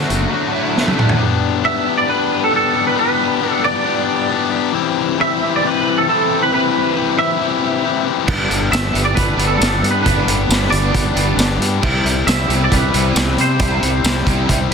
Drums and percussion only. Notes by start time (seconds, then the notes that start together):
0.00 snare
0.10 closed hi-hat
0.77 snare
0.88 high tom
0.99 mid tom
1.09 floor tom
8.28 kick, crash
8.51 closed hi-hat
8.73 snare, closed hi-hat, tambourine
8.95 closed hi-hat
9.17 kick, closed hi-hat
9.39 closed hi-hat
9.62 snare, closed hi-hat, tambourine
9.84 closed hi-hat
10.06 kick, closed hi-hat
10.28 closed hi-hat
10.51 snare, closed hi-hat, tambourine
10.63 snare
10.72 closed hi-hat
10.95 kick, closed hi-hat
11.17 closed hi-hat
11.39 snare, closed hi-hat, tambourine
11.62 closed hi-hat
11.83 kick, crash
12.06 closed hi-hat
12.28 snare, closed hi-hat, tambourine
12.50 closed hi-hat
12.72 kick, closed hi-hat
12.94 closed hi-hat
13.16 snare, closed hi-hat, tambourine
13.38 closed hi-hat
13.59 kick, closed hi-hat
13.83 closed hi-hat
14.05 snare, closed hi-hat, tambourine
14.17 snare
14.27 kick, closed hi-hat
14.49 kick, closed hi-hat